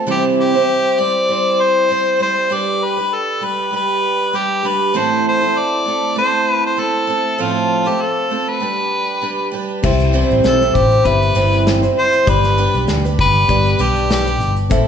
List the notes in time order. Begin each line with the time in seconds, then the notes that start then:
0.06 C3 E3 G3 C4 E4 C5
0.11 G4
0.40 G4
0.54 G3 C4 E4 C5
0.98 G3 C4 E4 C5 D5
1.28 G3 C4 E4 C5
1.61 C5
1.89 G3 C4 E4 C5
2.19 G3 C4 E4 C5
2.50 G3 D4 G4 B4 D5
2.84 B4
2.97 D4 G4 B4
3.14 A4
3.41 G3 D4 G4 B4
3.71 G3 D4 G4 B4
3.76 B4
4.33 G3 D4 G4 B4
4.63 G3 D4 G4 B4
4.94 A2 E3 A3 C4 E4 A4 C5
5.28 C5
5.41 A3 C4 E4 A4
5.58 D5
5.85 A3 C4 E4 A4
6.16 A3 C4 E4 A4 C5
6.66 C5
6.77 A3 C4 E4 A4
7.07 A3 C4 E4 A4
7.38 A2 F3 A3 C4 F4 A4
7.85 A3 C4 F4 G4 A4
8.01 A4
8.30 A3 C4 F4 A4
8.49 B4
8.60 G3 D4 G4 B4
9.22 G3 D4 G4 B4
9.51 G3 D4 G4 B4
9.82 C2 G3 C4 E4 G4 C5 E5, kick, crash
10.00 shaker
10.13 C3 E3 G3 C4 E4 C5
10.31 A1, shaker
10.44 B1 A4, snare, shaker
10.61 G3 C4 E4 C5, shaker
10.75 A1 G4, kick, shaker
10.91 shaker
11.05 G1 G3 C4 E4 G4 B4 E5, kick, shaker
11.22 shaker
11.35 G1 C3 E3 G3 C4 E4, shaker
11.53 shaker
11.67 snare, shaker
11.82 G3 C4 E4 C5, shaker
11.99 C5
12.13 shaker
12.26 G1 G3 B3 D4 G4 B4 D5, kick, shaker
12.44 snare, shaker
12.57 G3 D4 G4 B4, shaker
12.74 B1, shaker
12.88 D2, snare, shaker
13.04 D4 G4 B4, shaker
13.19 G1 B4, kick
13.35 shaker
13.48 G1 G3 B3 D4 G4 B4 D5, kick, shaker
13.66 shaker
13.79 B1 G3 D4 G4 B4, shaker
13.96 shaker
14.10 G4, snare, shaker
14.25 D4 G4 B4, shaker
14.40 G1, shaker
14.56 shaker
14.70 A1 A3 C4 E4 A4 E5, kick, shaker